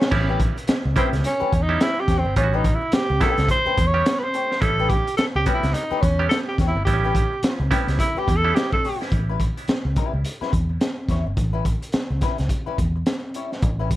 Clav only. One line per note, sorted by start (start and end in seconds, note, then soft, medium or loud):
0.11 0.58 G3 loud
0.11 0.58 B3 medium
0.11 0.58 C#4 medium
0.11 0.58 E4 loud
0.96 1.34 G3 medium
0.96 1.34 B3 medium
0.96 1.34 C#4 medium
0.96 1.34 E4 medium
1.69 2.04 G3 medium
1.69 2.04 B3 medium
1.69 2.04 C#4 medium
1.69 2.04 E4 medium
2.36 2.83 G3 medium
2.36 2.83 B3 medium
2.36 2.83 C#4 medium
2.36 2.45 F4 medium
2.43 2.86 F#4 medium
3.20 3.59 G3 medium
3.20 3.59 B3 medium
3.20 3.59 C#4 medium
3.20 3.59 E4 loud
3.94 4.29 G3 medium
3.94 4.29 B3 medium
3.94 4.29 C#4 medium
3.94 4.29 G4 medium
4.62 5.08 G3 medium
4.62 5.08 B3 medium
4.62 5.08 C#4 medium
4.62 5.08 E4 medium
5.46 5.84 G3 medium
5.46 5.84 B3 medium
5.46 5.84 C#4 medium
5.46 5.84 F#4 medium
6.19 6.54 G3 medium
6.19 6.54 B3 medium
6.19 6.54 C#4 medium
6.19 6.54 G4 medium
6.87 7.33 G3 medium
6.87 7.33 B3 medium
6.87 6.95 C4 medium
6.87 7.33 E4 medium
6.93 7.36 C#4 medium
7.71 8.09 G3 loud
7.71 8.09 B3 loud
7.71 8.09 C#4 medium
7.71 8.09 E4 loud
8.44 8.79 G3 medium
8.44 8.79 B3 medium
8.44 8.79 C#4 medium
8.44 8.79 E4 medium